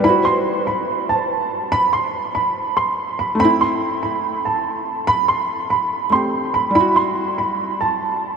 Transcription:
X:1
M:4/4
L:1/8
Q:1/4=143
K:Em
V:1 name="Grand piano"
b c'2 b2 a3 | b c'2 b2 c'2 b | b c'2 b2 a3 | b c'2 b2 c'2 b |
b c'2 b2 a3 |]
V:2 name="Felt piano"
[G,EF]8- | [G,EF]8 | [A,CE]8- | [A,CE]4- [A,CE] [A,CG]3 |
[G,EF]8 |]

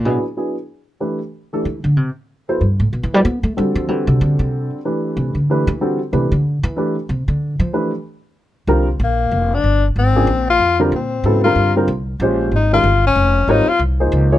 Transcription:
X:1
M:3/4
L:1/8
Q:"Swing" 1/4=188
K:Fblyd
V:1 name="Tenor saxophone"
z6 | [K:Ador] z6 | z6 | z6 |
z6 | z6 | z6 | z6 |
z6 | [K:Cphr] z2 B,3 =D- | =D z C3 F- | F z C3 F- |
F z4 z | E F2 D3 | E F z4 |]
V:2 name="Upright piano"
[G,=B,=D=E^G] z [_G,B,DE^G] z3 | [K:Ador] [E,A,DGB] z2 [E,A,DGA] z2 | z3 [F,B,EAc] z2 | z [F,B,EAc] z2 [D,G,CFA]2 |
[D,G,CFA]4- [D,G,CFA] z | [E,A,DGB]3 z [E,A,DGB] z | [D,G,CFA] z [E,A,DGB] z3 | [E,A,DGB] z4 z |
[E,A,DGB] z4 z | [K:Cphr] [=D,G,CFB] z4 z | z3 [D,F,B,=DA] z2 | z [=D,G,CFB] z2 [_D,^F,=B,=E=A] [=D,G,C=F_B]- |
[=D,G,CFB] [D,G,CFB] z2 [F,A,_DGc]2 | z [E,A,DGB] z4 | [G,CFBd] z2 [F,B,EAc]2 [F,B,EAd] |]
V:3 name="Upright bass" clef=bass
=B,, z4 z | [K:Ador] z4 E, D, | C, z3 G,, A,, | (3B,, E, G, B, A, G, =F, |
E, C, D, C,2 z | z2 C, D,2 E,- | E, z C, D,2 E,- | E, z C, D,2 =F,- |
=F, z4 z | [K:Cphr] C,,2 B,,,2 F,,,2 | G,,,2 A,,,2 B,,,2 | F,,2 B,,2 A,,2 |
G,,2 C,,2 B,,,2 | A,,,2 G,,,2 F,,,2 | A,,, z C,,2 D,,2 |]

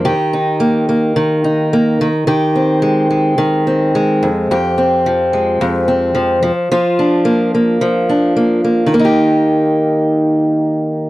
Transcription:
X:1
M:4/4
L:1/8
Q:"Swing 16ths" 1/4=108
K:Eb
V:1 name="Steel-string acoustic guitar"
[E,G] E B, B, E, E B, E, | [E,G] C A, A, E, C A, F,, | [F,,G] C F, A, F,, C F, F, | [F,F] D B, B, F, D B, B, |
[E,B,EG]8 |]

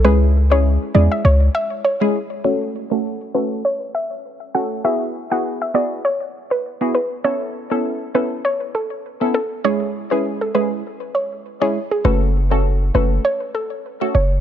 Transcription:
X:1
M:4/4
L:1/16
Q:"Swing 16ths" 1/4=100
K:F#m
V:1 name="Synth pluck"
B2 z c z2 d e c z e z c3 z | c z2 A2 z B2 c z e z3 f z | e z2 f z e d z c z2 B z2 B z | c z2 A2 z B2 c z A z3 A z |
c z2 B z A B z3 c z2 c z G | B z2 A z2 B z c z A z3 c z |]
V:2 name="Synth stab"
[G,CEG]3 [G,CEG]3 [G,CEG]2 z4 z [G,CEG] z2 | [A,CFA]3 [A,CFA]3 [A,CFA]2 z6 [A,CFA]2 | [B,EFG]3 [B,EFG]3 [B,EFG]2 z4 z [B,EFG] z2 | [B,CEA]3 [B,CEA]3 [B,CEA]2 z4 z [B,CEA] z2 |
[G,CEG]3 [G,CEG]3 [G,CEG]2 z4 z [G,CEG] z2 | [A,CFA]3 [A,CFA]3 [A,CFA]2 z4 z [A,CFA] z2 |]
V:3 name="808-style bass" clef=bass
C,,4- C,, z E,, z C,,2 z6 | z16 | z16 | z16 |
z16 | F,,,6 F,,,2 z6 F,,,2 |]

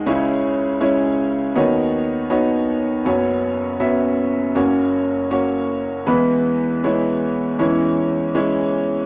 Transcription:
X:1
M:4/4
L:1/8
Q:1/4=80
K:F#mix
V:1 name="Grand piano"
[G,CEc] z [G,CEc] z [B,DFc] z [B,DFc] z | [B,CFc] z [B,CFe] z [A,CFc] z [A,CFc] z | [G,B,EB] z [G,B,Ec] z [G,CEc] z [G,CEc] z |]
V:2 name="Grand piano" clef=bass
[C,,C,]4 [D,,D,]4 | [F,,,F,,]4 [F,,,F,,]4 | [E,,E,]4 [E,,E,]4 |]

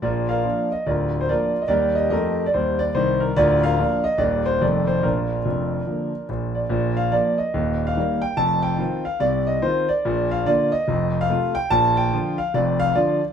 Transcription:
X:1
M:4/4
L:1/16
Q:"Swing" 1/4=144
K:Bb
V:1 name="Grand piano"
[FBd]2 [Bdf]4 e2 [FBd]3 c [FBd]3 e | [GBd]2 e2 [GBe]3 d c2 d2 c2 B2 | [FBd]2 [Bdf]4 e2 d2 c2 d2 c2 | [DFB]12 z2 d2- |
d2 f2 d2 e4- e f3 g2 | a2 g4 f2 d2 e2 c2 d2- | d2 f2 d2 e4- e f3 g2 | a2 g4 f2 d2 f2 d2 z2 |]
V:2 name="Grand piano" clef=bass
[B,,,B,,]4 [F,B,D]4 [D,,,D,,]4 [F,B,D]4 | [E,,G,]4 [F,,A,]4 [E,,G,]4 [C,,E,]4 | [D,,,D,,]4 [F,B,D]4 [E,,,E,,G,B,]4 [F,,,F,,E,F,A,]4 | [B,,,B,,]4 [F,,,F,,]4 [D,F,B,]4 [B,,,B,,]4 |
[B,,,B,,]4 [F,B,]4 [E,,,E,,]4 [E,G,B,]4 | [F,,,F,,]4 [E,CF]4 [C,,C,]4 [E,CF]4 | [B,,,B,,]4 [D,B,F]4 [F,,,F,,]4 [C,A,F]4 | [B,,,B,,]4 [D,F,F]4 [F,,,F,,]4 [D,F,F]4 |]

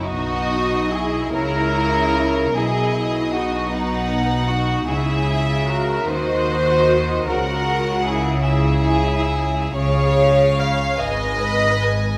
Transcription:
X:1
M:6/8
L:1/8
Q:3/8=50
K:C#dor
V:1 name="Violin section"
d3 c3 | d3 f3 | e3 _e3 | f3 e3 |
^e3 g b g |]
V:2 name="Violin section"
F2 G A3 | G2 F D2 F | G2 A =c3 | A2 G G3 |
c2 ^e d3 |]
V:3 name="Viola section"
D2 E E3 | E2 D B,2 D | E2 F _G3 | F2 E E3 |
G2 c B3 |]
V:4 name="Cello section" clef=bass
B,,3 C,3 | B,,6 | C,3 _E,3 | C,6 |
C,3 G,,3 |]
V:5 name="Double bass section" clef=bass
B,,,3 C,,3 | B,,,6 | C,,3 _E,,3 | C,,6 |
C,,3 G,,,3 |]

